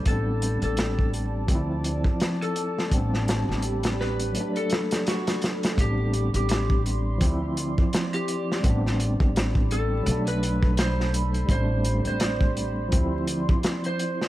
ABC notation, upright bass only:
X:1
M:4/4
L:1/16
Q:"Swing 16ths" 1/4=84
K:Am
V:1 name="Upright bass" clef=bass
A,,,3 A,,,4- A,,, D,,3 z4 z | A,,,3 A,,,4- A,,, z8 | A,,,3 A,,,4- A,,, D,,3 z4 z | A,,,3 A,,,4- A,,, B,,,8 |
A,,,3 A,,,4- A,,, D,,3 z4 z |]